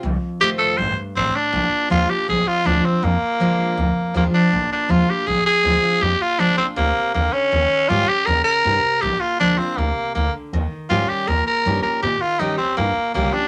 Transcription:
<<
  \new Staff \with { instrumentName = "Tenor saxophone" } { \time 4/4 \key bes \mixolydian \tempo 4 = 160 r4 g'8 a'8 c''8 r8 c'8 d'8~ | d'4 f'8 g'8 aes'8 f'8 d'8 c'8 | bes2. bes8 d'8~ | d'8 d'8 f'8 g'8 aes'8 aes'4. |
g'8 f'8 d'8 c'8 bes4 bes8 des'8~ | des'4 f'8 g'8 bes'8 bes'4. | g'8 f'8 d'8 c'8 bes4 bes8 r8 | r4 f'8 g'8 bes'8 bes'4 bes'8 |
g'8 f'8 ees'8 c'8 bes4 bes8 d'8 | }
  \new Staff \with { instrumentName = "Steel-string acoustic guitar" } { \time 4/4 \key bes \mixolydian << { r4 <ees a c' f'>4 r2 | r4 <f aes d' f'>8 <d' f'>8 r4 <f aes d' f'>8 <d' f'>8 | r4 <f aes d' f'>4 r4 <f aes d' f'>8 <d' f'>8 | r4 <f aes d' f'>8 <d' f'>8 r4 <f aes d' f'>8 <d' f'>8 |
r4 <f aes d' f'>8 <d' f'>8 r2 | r4 <ees g des' g'>8 <des' g'>8 r2 | r4 <f aes d' f'>8 <d' f'>8 r2 | r4 <ees g des' g'>4 r4 <ees g des' g'>8 <des' g'>8 |
r4 <ees g des' g'>8 <des' g'>8 r4 <ees g des' g'>8 <des' g'>8 | } \\ { f,2 g,4 a,4 | bes,2 f,2 | bes,2 f,2 | bes,2 f,2 |
bes,2 c4 d4 | ees2 des4 c4 | bes,2 c4 d4 | ees2 bes,2 |
ees2 bes,2 | } >> }
  \new Staff \with { instrumentName = "Upright bass" } { \clef bass \time 4/4 \key bes \mixolydian c,8 r8 a,,8 f,,8 a,,8 r8 a,,8 r8 | bes,,8 r8 ees,8 r8 bes,,8 r8 d,8 r8 | f,8 r8 d,8 bes,,8 d,8 r8 ees,8 r8 | bes,,8 r8 ees,8 r8 bes,,8 r8 d,8 r8 |
f,8 r8 d,8 bes,,8 d,8 r8 ees,8 r8 | ees,8 r8 aes,8 r8 ees,8 r8 g,8 r8 | bes,,8 r8 d,8 bes,,8 d,8 r8 d,8 r8 | ees,8 r8 aes,8 r8 ees,8 r8 g,8 r8 |
bes,8 r8 g,8 ees,8 g,8 r8 c,8 r8 | }
>>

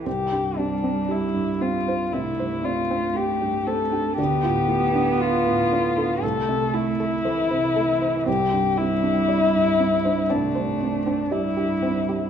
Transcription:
<<
  \new Staff \with { instrumentName = "Synth pluck" } { \time 4/4 \key c \major \tempo 4 = 59 c'16 g'16 g'16 c'16 g'16 r16 c'16 c''16 c'16 c''16 d''16 c'16 g'16 g'16 c'16 g'16 | d'16 f'16 f'16 d'16 f'16 r16 d'16 a'16 a'16 e''16 a''16 a'16 c''16 c''16 a'16 c''16 | c'16 g'16 g'16 c'16 g'16 r16 c'16 c''16 c'16 c''16 d''16 c'16 g'16 g'16 c'16 g'16 | }
  \new Staff \with { instrumentName = "Violin" } { \time 4/4 \key c \major g'8 d'8 e'8 f'8 e'8 f'8 g'8 a'8 | g'4 f'4 a'8 e'4. | g'8 e'4. d'4 e'4 | }
  \new Staff \with { instrumentName = "Felt piano" } { \time 4/4 \key c \major c,16 g,16 c'16 d'16 g'16 g,16 c'16 d'16 c,16 g,16 c'16 d'16 g'16 g,16 c'16 d'16 | d,16 a,16 a16 d'16 f'16 a,16 a16 d'16 c,16 c16 a16 e'16 a'16 c16 a16 e'16 | c,16 g,16 c'16 d'16 d''16 g,16 c'16 d'16 c,16 g,16 c'16 d'16 d''16 g,16 c'16 d'16 | }
  \new Staff \with { instrumentName = "Cello" } { \clef bass \time 4/4 \key c \major g2 a2 | b2 a4 e8 e8 | g2 a4 g4 | }
>>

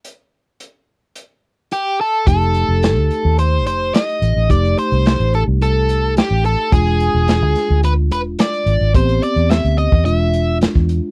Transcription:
<<
  \new Staff \with { instrumentName = "Overdriven electric guitar" } { \time 4/4 \key f \lydian \tempo 4 = 108 r2. g'8 a'8 | a'2 c''8 c''8 ees''4 | d''8 c''8 c''8 a'8 a'4 g'8 a'8 | gis'2 b'8 b'8 d''4 |
c''8 d''8 e''8 dis''8 e''4 r4 | }
  \new Staff \with { instrumentName = "Tine electric piano" } { \time 4/4 \key f \lydian r1 | <a ees' g'>1 | <a ees' g'>1 | <gis d' f'>1 |
<b c' g'>2 <gis d' f'>2 | }
  \new Staff \with { instrumentName = "Fingered electric bass" } { \clef bass \time 4/4 \key f \lydian r1 | f,,8. f,,8 d,16 r16 ees,8. f,,8 r8 a,,16 a,,16 | f,,8 r16 c,8 a,,8 c,4. a,,8 r16 | e,,8. e,,8 d,16 r16 d,8. e,,8 r8 gis,,16 gis,,16 |
a,,8 r16 e,8 d,8 e,16 e,,4~ e,,16 e,8 r16 | }
  \new DrumStaff \with { instrumentName = "Drums" } \drummode { \time 4/4 hh4 hh4 hh4 hh4 | <hh bd>16 hh16 hh8 <hh sn>8 hh8 hh8 hh8 <hh sn>16 hh16 hh8 | <hh bd>16 hh16 hh16 hh16 <hh sn>16 hh16 hh8 hh8 hh8 <hh sn>8 hh8 | <hh bd>16 hh16 hh8 <hh sn>8 <hh sn>8 hh8 hh8 <hh sn>16 hh16 hh8 |
<hh bd>16 hh16 hh16 hh16 <hh sn>16 hh16 hh16 bd16 hh8 hh8 <hh sn>16 bd16 hh8 | }
>>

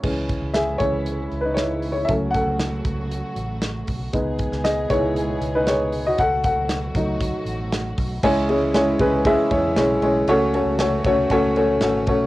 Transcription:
<<
  \new Staff \with { instrumentName = "Upright piano" } { \time 4/4 \key cis \minor \tempo 4 = 117 r4 <gis' e''>8 <e' cis''>4~ <e' cis''>16 <dis' b'>16 <e' cis''>8. <e' cis''>16 | <a' e''>8 <a' fis''>2 r4. | r4 <gis' dis''>8 <e' cis''>4~ <e' cis''>16 <dis' b'>16 <gis' cis''>8. <fis' dis''>16 | <a' fis''>8 <a' fis''>2 r4. |
<gis cis' e' gis' cis''>8 <gis cis' e' gis' cis''>8 <gis cis' e' gis' cis''>8 <gis cis' e' gis' b'>8 <gis cis' e' gis' e''>8 <gis cis' e' gis' cis''>8 <gis cis' e' gis' cis''>8 <gis cis' e' gis' cis''>8 | <a cis' fis' a' cis''>8 <a cis' fis' a' cis''>8 <a cis' fis' a' cis''>8 <a cis' fis' a' cis''>8 <a cis' fis' a' cis''>8 <a cis' fis' a' cis''>8 <a cis' fis' a' cis''>8 <a cis' fis' a' cis''>8 | }
  \new Staff \with { instrumentName = "Upright piano" } { \clef bass \time 4/4 \key cis \minor <e gis cis'>4. <e gis cis'>8 r2 | <fis a cis'>4. r2 r8 | <gis b dis'>8 r4 <gis b dis'>8 r2 | r4. <fis a dis'>4. r4 |
cis4. r2 r8 | cis4. r2 r8 | }
  \new Staff \with { instrumentName = "String section" } { \clef bass \time 4/4 \key cis \minor << { <e gis e'>1 | <fis a fis'>1 | <gis b gis'>1 | <fis a fis'>1 |
<e gis e'>1 | <fis a fis'>1 | } \\ { cis1~ | cis1 | b,1~ | b,1 |
cis1~ | cis1 | } >> }
  \new Staff \with { instrumentName = "Fingered electric bass" } { \clef bass \time 4/4 \key cis \minor cis,8. cis,8. cis,4 cis,4. | cis,8. cis,8. cis,8. r16 a,,4 b,,8 | cis,8. cis,8. cis,4 cis,4. | cis,8. cis,8. cis,8. r16 a,,4 b,,8 |
cis,4. cis,8. r16 e,8 b,,8 b,,8 | cis,8. cis,8. cis,8 cis,4 gis,,8 b,,8 | }
  \new DrumStaff \with { instrumentName = "Drums" } \drummode { \time 4/4 <cymc bd>8 <hh bd>8 <hh sn>8 <hh bd>8 hh8 hh8 <hh sn>8 hho8 | <hh bd>8 <hh bd>8 <hh sn>8 <hh bd>8 hh8 hh8 <hh sn>8 <hho bd>8 | <hh bd>8 <hh bd>16 sn16 <hh sn>8 <hh bd>8 hh8 hh8 <hh sn>8 hho8 | <hh bd>8 <hh bd>8 <hh sn>8 <hh bd>8 <hh bd>8 hh8 <hh sn>8 <hho bd>8 |
<cymc bd>8 cymr8 <cymr sn>8 <bd cymr>8 <bd cymr>8 <bd cymr>8 <cymr sn>8 cymr8 | cymr8 cymr8 <cymr sn>8 <bd cymr>8 <bd cymr>8 cymr8 <cymr sn>8 <bd cymr>8 | }
>>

